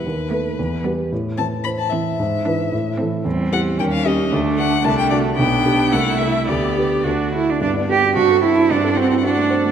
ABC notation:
X:1
M:2/4
L:1/16
Q:1/4=112
K:Ador
V:1 name="Violin"
B6 z2 | z2 a2 b a e2- | e6 z2 | [K:G] z2 f2 g =f _e2 |
z2 f2 a g d2 | g4 f2 e2 | d4 z4 | d4 a4 |
f8 |]
V:2 name="Grand piano"
^D,,2 [AB]2 E,,2 [GB]2 | A,,2 E,2 [Ec]2 E2 | ^G,,2 [EB]2 A,,2 [EA]2 | [K:G] E,,2 [EG]2 _E,,2 [_DG]2 |
D,,2 [DA]2 C,,2 [DF]2 | B,,,2 [DG]2 C,,2 [EA]2 | D,,2 [GB]2 D,,2 [FA]2 | G,, d G F G,, A E D |
G,, A F E F A, c A, |]
V:3 name="Viola"
z2 B,2 z2 B,2 | z2 C2 z2 C2 | z2 D2 z2 C2 | [K:G] C4 _D4 |
D4 D4 | D4 E4 | G4 F2 z2 | B,4 C4- |
C8 |]
V:4 name="Cello"
z2 A,2 z2 G,2 | z2 E,2 z2 E,2 | z2 E,2 z2 E,2 | [K:G] G,4 G,4 |
A,4 A,4 | B,4 A,4 | B,4 D2 E D | D2 G2 F2 E2 |
D2 C2 D4 |]